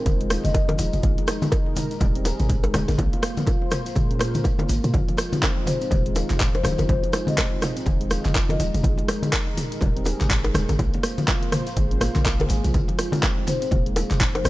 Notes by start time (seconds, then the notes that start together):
Already playing: G#3 D#4 F4 A#4
0.06 D#1 D#3, kick, closed hi-hat, low bongo, muted conga, high conga, maracas
0.21 G#3, closed hi-hat
0.30 F4, cross-stick, open hi-hat, low bongo, maracas
0.44 F1 D#5, closed hi-hat, muted conga, high conga, maracas
0.54 D#5, kick, closed hi-hat, high bongo, low bongo, maracas
0.69 F3, closed hi-hat, high bongo, high conga
0.78 D#1 F3, open hi-hat, low bongo, muted conga, maracas
0.93 F1, closed hi-hat, mid tom, maracas
1.02 G#1 G#3 A#4, kick, closed hi-hat, low bongo, high conga, maracas
1.18 D#4, closed hi-hat, muted conga
1.27 cross-stick, open hi-hat, low bongo, maracas
1.42 D#3, closed hi-hat, high conga, maracas
1.52 D#4, kick, closed hi-hat, high bongo, low bongo, maracas
1.66 muted conga
1.76 mid tom, open hi-hat, low bongo, high conga, maracas
1.91 D#4, closed hi-hat, maracas
2.01 D#1 G3, kick, closed hi-hat, mid tom, low bongo, muted conga, low conga, maracas
2.15 C4, closed hi-hat
2.25 G#4, open hi-hat, high bongo, low bongo, maracas
2.40 G#1, closed hi-hat, mid tom, muted conga, maracas
2.49 kick, closed hi-hat, low bongo, low conga, maracas
2.64 G#3, closed hi-hat, high bongo
2.74 D#1 G#3, cross-stick, open hi-hat, low bongo, muted conga, high conga, low conga, maracas
2.88 G#1, closed hi-hat, high bongo, high conga, maracas
2.98 A#1 A#3 F4 C5, kick, closed hi-hat, low bongo, high conga, low conga, maracas
3.13 F4, closed hi-hat, muted conga
3.22 cross-stick, open hi-hat, low bongo, maracas
3.37 F3, closed hi-hat, high conga, maracas
3.46 F4, kick, closed hi-hat, high bongo, low bongo, low conga, maracas
3.62 muted conga
3.71 cross-stick, mid tom, open hi-hat, low bongo, maracas
3.86 F4, closed hi-hat, maracas
3.95 A#2 G#3, kick, closed hi-hat, low bongo, muted conga, high conga, maracas
4.10 C#4, closed hi-hat
4.19 A#4, cross-stick, open hi-hat, low bongo, maracas
4.35 closed hi-hat, muted conga, high conga, maracas
4.44 kick, closed hi-hat, high bongo, low bongo, maracas
4.59 A#3, closed hi-hat, high bongo, high conga
4.69 G#1 A#3, open hi-hat, low bongo, muted conga, maracas
4.84 A#2, closed hi-hat, mid tom, maracas
4.93 F1 F3 G#3 D#4, kick, closed hi-hat, low bongo, high conga, maracas
5.08 F3, closed hi-hat, muted conga
5.17 cross-stick, open hi-hat, low bongo, maracas
5.33 C3, closed hi-hat, high conga, maracas
5.43 C4, kick, clap, closed hi-hat, high bongo, low bongo
5.57 muted conga
5.66 C5, mid tom, open hi-hat, low bongo, high conga, maracas
5.81 C4, closed hi-hat, maracas
5.91 D#1 D#3, kick, closed hi-hat, mid tom, low bongo, muted conga, low conga, maracas
6.06 G#3, closed hi-hat
6.16 F4, open hi-hat, high bongo, low bongo, maracas
6.30 F1, clap, closed hi-hat, mid tom, muted conga, maracas
6.40 kick, clap, closed hi-hat, low bongo, low conga
6.55 F3 C5, closed hi-hat, high bongo
6.63 D#1 F3 C5, cross-stick, open hi-hat, low bongo, muted conga, high conga, low conga, maracas
6.78 F1, closed hi-hat, high bongo, high conga, maracas
6.89 F1 F3 C5, kick, closed hi-hat, low bongo, high conga, low conga, maracas
7.03 F3, closed hi-hat, muted conga
7.13 cross-stick, open hi-hat, low bongo, maracas
7.27 C3 D#5, closed hi-hat, high conga, maracas
7.37 kick, clap, closed hi-hat, high bongo, low bongo, low conga
7.52 muted conga
7.62 cross-stick, mid tom, open hi-hat, low bongo, maracas
7.76 C4, closed hi-hat, maracas
7.86 D#1 D#3, kick, closed hi-hat, low bongo, muted conga, high conga, maracas
8.01 G#3, closed hi-hat
8.10 F4, cross-stick, open hi-hat, low bongo, maracas
8.25 F1, clap, closed hi-hat, muted conga, high conga, maracas
8.35 kick, clap, closed hi-hat, high bongo, low bongo
8.49 F3 D#5, closed hi-hat, high bongo, high conga
8.60 D#1 F3 D#5, open hi-hat, low bongo, muted conga, maracas
8.74 F1, closed hi-hat, mid tom, maracas
8.83 G#1 G#3 A#4, kick, closed hi-hat, low bongo, high conga, maracas
8.98 G#3, closed hi-hat, muted conga
9.08 cross-stick, open hi-hat, low bongo, maracas
9.23 D#3, closed hi-hat, high conga, maracas
9.32 D#4, kick, clap, closed hi-hat, high bongo, low bongo
9.47 muted conga
9.57 mid tom, open hi-hat, low bongo, high conga, maracas
9.72 D#4, closed hi-hat, maracas
9.81 D#1 G3, kick, closed hi-hat, mid tom, low bongo, muted conga, low conga, maracas
9.96 C4, closed hi-hat
10.05 G#4, open hi-hat, high bongo, low bongo, maracas
10.20 G#1, clap, closed hi-hat, mid tom, muted conga, maracas
10.29 kick, clap, closed hi-hat, low bongo, low conga
10.44 G#3, closed hi-hat, high bongo
10.54 D#1 G#3, cross-stick, open hi-hat, low bongo, muted conga, high conga, low conga, maracas
10.69 G#1, closed hi-hat, high bongo, high conga, maracas
10.79 A#1 A#3 F4 C5, kick, closed hi-hat, low bongo, high conga, low conga, maracas
10.94 A#3, closed hi-hat, muted conga
11.03 cross-stick, open hi-hat, low bongo, maracas
11.18 F3, closed hi-hat, high conga, maracas
11.28 F4, kick, clap, closed hi-hat, high bongo, low bongo, low conga
11.41 closed hi-hat, muted conga
11.52 cross-stick, mid tom, open hi-hat, low bongo, high conga, maracas
11.67 F4, closed hi-hat, maracas
11.76 G#1 G#3, kick, closed hi-hat, low bongo, muted conga, high conga, maracas
11.91 C#4, closed hi-hat
12.01 A#3, cross-stick, open hi-hat, low bongo, low conga, maracas
12.15 A#1, clap, closed hi-hat, muted conga, high conga, maracas
12.25 kick, clap, closed hi-hat, high bongo, low bongo
12.40 G#4, closed hi-hat, high bongo, high conga
12.49 G#1 G#3, open hi-hat, low bongo, muted conga, maracas
12.64 A#1 F3, closed hi-hat, mid tom, maracas
12.74 F1 G#3 D#4, kick, closed hi-hat, low bongo, high conga, maracas
12.88 F3, closed hi-hat, muted conga
12.99 cross-stick, open hi-hat, low bongo, maracas
13.12 C3, closed hi-hat, high conga, maracas
13.22 C4, kick, clap, closed hi-hat, high bongo, low bongo, maracas
13.38 muted conga
13.47 C5, mid tom, open hi-hat, low bongo, high conga, maracas
13.62 C4, closed hi-hat, maracas
13.71 D#1 A#3, kick, closed hi-hat, mid tom, low bongo, muted conga, low conga, maracas
13.86 G#3, closed hi-hat
13.96 F4, open hi-hat, high bongo, low bongo, maracas
14.10 F1, clap, closed hi-hat, mid tom, muted conga, maracas
14.20 kick, clap, closed hi-hat, low bongo, low conga
14.35 F3 C5, closed hi-hat, high bongo
14.45 D#1 F3 C5, cross-stick, open hi-hat, low bongo, muted conga, high conga, low conga, maracas